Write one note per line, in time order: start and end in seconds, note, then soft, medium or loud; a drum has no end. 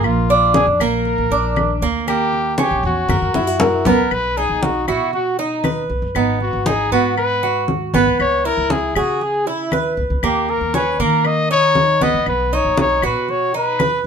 0.00 0.64 A#1 medium
0.00 0.28 A#3 medium
0.00 high conga soft
0.04 0.54 F4 medium
0.04 claves medium
0.29 0.79 D4 medium
0.29 high conga soft
0.54 0.66 G#4 medium
0.54 high conga medium
0.67 0.79 F2 medium
0.80 1.16 A#1 medium
0.80 1.30 A#3 medium
0.80 1.77 A#4 medium
0.80 high conga soft
0.80 claves medium
1.05 high conga soft
1.18 1.30 A#1 medium
1.30 1.79 A#1 medium
1.30 1.81 D4 medium
1.30 high conga soft
1.56 high conga medium
1.56 claves medium
1.82 2.07 D2 medium
1.82 2.07 A#3 medium
1.82 high conga soft
2.07 2.68 D#2 medium
2.07 2.57 A#3 medium
2.07 2.56 G4 loud
2.07 high conga soft
2.07 claves medium
2.33 high conga soft
2.58 3.08 C#4 medium
2.58 2.83 G4 medium
2.58 high conga medium
2.71 2.83 A#1 medium
2.83 3.08 E2 medium
2.83 3.83 F#4 medium
3.09 3.21 F#2 loud
3.09 3.34 A#4 medium
3.09 high conga medium
3.09 claves medium
3.22 3.34 F#2 medium
3.34 3.83 F#2 medium
3.34 3.85 E4 medium
3.34 3.47 E4 medium
3.34 high conga medium
3.47 3.59 F#4 medium
3.60 4.08 A#4 medium
3.60 low conga medium
3.85 4.10 C#2 medium
3.85 4.11 B3 medium
3.85 4.14 A#4 medium
3.85 low conga medium
4.11 4.48 B1 medium
4.11 4.39 B4 medium
4.11 high conga soft
4.11 claves medium
4.37 4.87 D#4 medium
4.37 4.64 G#4 medium
4.37 high conga soft
4.50 4.89 B1 medium
4.63 4.87 F#4 medium
4.63 high conga medium
4.88 5.86 B2 medium
4.88 5.12 E4 medium
4.88 5.38 F#4 medium
4.88 high conga soft
4.88 claves medium
5.13 5.37 F#4 medium
5.13 high conga soft
5.39 5.64 D#4 medium
5.39 5.86 D#4 medium
5.39 high conga soft
5.64 6.14 B4 medium
5.64 high conga medium
5.64 claves medium
5.90 6.01 B1 medium
5.90 high conga soft
6.02 6.15 F#2 medium
6.15 6.52 G#1 medium
6.15 6.65 B3 medium
6.15 6.40 D#4 medium
6.15 high conga soft
6.15 claves medium
6.40 6.69 F#4 medium
6.40 high conga soft
6.53 6.93 G#1 medium
6.66 6.91 D#4 medium
6.66 6.92 G#4 medium
6.66 high conga medium
6.92 7.90 G#2 medium
6.92 7.42 B3 medium
6.92 7.16 F#4 medium
7.17 7.65 B4 loud
7.17 high conga soft
7.17 claves medium
7.43 7.93 F#4 medium
7.43 high conga soft
7.68 high conga medium
7.94 8.06 G#1 medium
7.94 8.44 B3 medium
7.94 8.18 B4 medium
7.94 high conga medium
8.06 8.19 C2 medium
8.19 8.56 C#2 medium
8.19 8.47 C#5 loud
8.19 high conga soft
8.19 claves medium
8.45 8.95 E4 medium
8.45 8.73 A#4 loud
8.45 high conga soft
8.57 8.97 C#2 medium
8.70 8.96 G#4 medium
8.70 high conga medium
8.95 9.94 C#3 medium
8.95 9.24 F#4 medium
8.95 9.46 G#4 medium
8.95 high conga soft
8.95 claves medium
9.21 9.48 G#4 medium
9.21 high conga soft
9.47 9.72 E4 medium
9.47 9.95 E4 medium
9.47 high conga soft
9.72 10.22 B4 medium
9.72 high conga medium
9.72 claves medium
9.97 10.10 C#2 medium
9.97 high conga soft
10.10 10.22 C#2 medium
10.23 10.60 D#2 medium
10.23 10.73 A#3 medium
10.23 10.52 G4 medium
10.23 high conga soft
10.23 claves medium
10.49 10.75 A#4 loud
10.49 high conga soft
10.61 11.01 D#2 medium
10.74 10.99 C#4 medium
10.74 11.03 B4 medium
10.74 high conga medium
10.99 11.98 D#3 medium
10.99 11.49 A#3 medium
10.99 11.28 A#4 medium
11.25 11.51 D#5 loud
11.25 high conga soft
11.25 claves medium
11.50 12.00 D#4 medium
11.50 12.05 C#5 loud
11.50 high conga soft
11.75 high conga medium
12.01 12.14 D#2 medium
12.01 12.51 B3 medium
12.01 12.28 D#5 medium
12.01 high conga medium
12.14 12.26 C#2 medium
12.26 12.63 B1 medium
12.26 12.56 B4 medium
12.26 high conga soft
12.26 claves medium
12.52 13.02 D#4 medium
12.52 12.79 C#5 medium
12.52 high conga soft
12.65 13.04 B1 medium
12.77 13.03 C#5 loud
12.77 high conga medium
13.02 14.01 B2 medium
13.02 13.53 F#4 medium
13.02 13.32 B4 medium
13.02 high conga soft
13.02 claves medium
13.29 13.55 C#5 medium
13.29 high conga soft
13.54 13.79 D#4 medium
13.54 14.03 B4 medium
13.54 high conga soft
13.79 14.07 B4 medium
13.79 high conga medium
13.79 claves medium